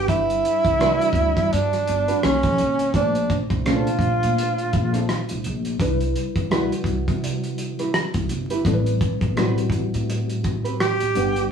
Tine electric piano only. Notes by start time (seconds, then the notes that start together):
Already playing: G3 D4 B4 F#5
0.79 G3 D4 F#4 D5
2.22 B2 A#3 C#4 C#5
2.30 D#4
2.94 A#2 A3 D4 C5
3.66 A#2 A3 D4 C5
5.80 C3 G3 D4 B4
5.87 E4
6.51 C3 G3 E4 F#4
8.65 A2 G3 C4 A4
8.74 B4
9.36 A2 G3 C4 F#4
9.45 G4
11.15 G3 D4 B4 F#5